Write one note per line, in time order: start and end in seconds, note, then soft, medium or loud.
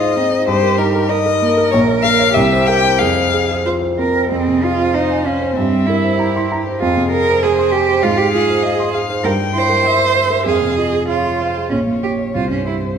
0.00 0.44 G#2 medium
0.00 0.11 D#4 soft
0.00 0.18 F4 medium
0.00 0.51 G#4 medium
0.00 0.32 C5 medium
0.00 0.47 D#5 medium
0.17 0.41 C4 soft
0.17 0.48 D#4 medium
0.32 0.48 C5 medium
0.46 1.69 G2 medium
0.46 1.09 G4 medium
0.46 0.79 C5 medium
0.63 0.89 A#4 medium
0.78 1.04 D#4 medium
0.78 1.11 A#4 medium
0.95 1.20 A#4 medium
1.09 1.35 D#4 medium
1.09 1.18 A#4 medium
1.09 1.71 D#5 medium
1.26 1.51 A#4 medium
1.42 1.66 A#3 medium
1.42 2.32 A#4 medium
1.57 1.72 A#4 medium
1.71 2.34 A#1 medium
1.71 1.79 C#5 medium
1.88 2.13 C#5 medium
2.03 2.29 A#4 medium
2.03 2.35 F5 loud
2.20 2.35 C#5 medium
2.33 2.98 C2 medium
2.33 3.01 G4 medium
2.33 2.68 E5 medium
2.53 2.78 C5 medium
2.66 2.94 A#4 medium
2.66 3.00 G5 loud
2.84 3.00 C5 medium
2.99 4.28 F2 medium
2.99 3.59 G#4 medium
2.99 3.65 F5 medium
3.16 3.42 C5 medium
3.33 3.59 G#4 medium
3.51 3.76 C5 soft
3.66 3.92 F4 soft
3.66 3.74 C5 medium
3.82 4.09 C5 medium
3.99 4.25 C4 soft
3.99 4.30 A#4 medium
4.15 4.31 C5 soft
4.31 5.53 F2 medium
4.31 4.64 C4 medium
4.31 4.96 G#4 medium
4.48 4.73 C3 soft
4.63 4.96 F4 medium
4.63 4.88 F4 soft
4.79 5.04 C5 soft
4.94 5.28 D#4 medium
4.94 5.57 C5 medium
4.94 5.20 F5 soft
5.10 5.35 G#5 medium
5.26 5.55 C#4 medium
5.26 5.50 F5 soft
5.42 5.57 C5 soft
5.56 6.77 G2 medium
5.56 5.88 C4 medium
5.56 6.18 E5 medium
5.74 5.97 G3 soft
5.87 6.49 E4 medium
5.87 6.13 A#4 medium
6.04 6.28 C5 soft
6.18 6.81 G4 medium
6.18 6.43 A#5 soft
6.36 6.59 C6 medium
6.52 6.75 A#5 medium
6.67 6.81 C5 medium
6.80 8.00 F2 medium
6.80 7.09 F4 medium
6.80 7.44 G#4 medium
6.97 7.21 C3 soft
7.12 7.36 G#4 medium
7.12 7.44 A#4 medium
7.29 7.52 C5 medium
7.42 7.73 G#4 medium
7.42 8.04 C5 medium
7.42 7.67 G#5 medium
7.58 7.82 C6 medium
7.72 8.04 G4 medium
7.72 7.96 G#5 medium
7.89 8.03 C5 medium
8.02 9.21 G#2 medium
8.02 8.19 F4 medium
8.02 8.65 F5 medium
8.18 8.42 G#3 soft
8.18 8.32 G4 medium
8.33 8.58 F4 medium
8.33 8.92 G#4 medium
8.50 8.73 C5 soft
8.63 8.93 D#5 medium
8.63 8.88 F5 medium
8.79 9.03 C6 medium
8.94 9.26 F5 medium
8.94 9.19 F5 medium
9.10 9.25 C5 medium
9.24 10.43 G2 medium
9.24 9.32 A#4 medium
9.24 9.87 G5 medium
9.39 9.64 G3 soft
9.54 9.79 E4 soft
9.54 10.45 C5 medium
9.69 9.94 A#4 soft
9.84 10.09 E5 soft
9.84 10.16 E5 medium
9.99 10.25 C6 medium
10.15 10.40 E5 soft
10.15 10.49 E5 medium
10.30 10.46 A#4 soft
10.46 11.67 F2 medium
10.46 11.08 G#4 medium
10.46 10.78 F5 medium
10.61 10.87 C3 soft
10.78 11.03 F4 soft
10.78 11.09 D#5 medium
10.93 11.18 G#4 soft
11.09 11.70 F4 medium
11.09 11.43 C#5 soft
11.09 11.34 F5 soft
11.24 11.49 C6 soft
11.40 11.72 C5 soft
11.40 11.65 F5 soft
11.56 11.72 G#4 soft
11.71 12.32 A#1 soft
11.71 11.79 C#4 medium
11.71 12.37 C#5 medium
11.87 12.12 A#2 soft
12.03 12.28 G4 soft
12.03 12.11 G4 medium
12.19 12.34 C#5 soft
12.35 12.97 C2 soft
12.35 12.50 F4 medium
12.35 12.98 C5 soft
12.51 12.77 G2 soft
12.51 12.66 C#4 soft
12.66 12.74 E4 soft
12.66 12.93 G4 soft
12.84 12.98 C5 soft